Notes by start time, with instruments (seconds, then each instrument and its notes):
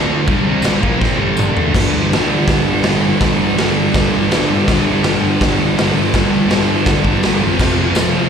Already playing: distorted electric guitar D3 A3 D4
0.27 distorted electric guitar G2 D3 G3, kick, crash
0.45 distorted electric guitar C3 G3 C4
0.62 distorted electric guitar G2 D3 G3, snare, tambourine, crash
0.80 distorted electric guitar A#2 F3 A#3, kick
0.99 distorted electric guitar C3 G3 C4, kick
1.03 snare
1.17 distorted electric guitar G2 D3 G3
1.37 mid tom, tambourine
1.53 distorted electric guitar D3 A3 D4, floor tom
1.72 distorted electric guitar G2 D3, kick, crash
1.76 distorted electric guitar G3, snare
1.91 distorted electric guitar G3
1.95 distorted electric guitar D3
2.10 distorted electric guitar G2 D3, snare, open hi-hat
2.15 distorted electric guitar G3
2.48 kick, snare, open hi-hat
2.65 distorted electric guitar G3
2.70 distorted electric guitar D3
2.83 distorted electric guitar G2 D3, snare, open hi-hat
2.89 distorted electric guitar G3
3.03 distorted electric guitar G3
3.08 distorted electric guitar D3
3.20 distorted electric guitar G2 D3, kick, snare, open hi-hat
3.25 distorted electric guitar G3
3.39 distorted electric guitar G3
3.44 distorted electric guitar D3
3.57 distorted electric guitar G2 D3, snare, open hi-hat
3.61 distorted electric guitar G3
3.94 kick, snare, open hi-hat
4.12 distorted electric guitar G3
4.16 distorted electric guitar D3
4.31 distorted electric guitar G2 D3, snare, open hi-hat
4.36 distorted electric guitar G3
4.49 distorted electric guitar G3
4.54 distorted electric guitar D3
4.68 distorted electric guitar G2 D3, kick, snare, open hi-hat
4.74 distorted electric guitar G3
4.87 distorted electric guitar G3
4.92 distorted electric guitar D3
5.03 distorted electric guitar G2 D3, snare, open hi-hat
5.09 distorted electric guitar G3
5.41 kick, snare, open hi-hat
5.59 distorted electric guitar G3
5.64 distorted electric guitar D3
5.78 distorted electric guitar G2 D3, snare, open hi-hat
5.83 distorted electric guitar G3
5.95 distorted electric guitar G3
6.00 distorted electric guitar D3
6.13 distorted electric guitar G2 D3, kick, snare, open hi-hat
6.18 distorted electric guitar G3
6.31 distorted electric guitar G3
6.36 distorted electric guitar D3
6.49 distorted electric guitar G2 D3, snare, open hi-hat
6.54 distorted electric guitar G3
6.86 kick, snare, open hi-hat
7.03 distorted electric guitar G3, kick
7.08 distorted electric guitar D3
7.22 distorted electric guitar G2 D3, snare, open hi-hat
7.27 distorted electric guitar G3
7.40 distorted electric guitar C3 F3
7.45 distorted electric guitar F2
7.58 distorted electric guitar F2 C3, kick, snare, crash
7.63 distorted electric guitar F3
7.77 distorted electric guitar F3
7.83 distorted electric guitar C3
7.95 distorted electric guitar F2 C3, snare, open hi-hat, tambourine
8.01 distorted electric guitar F3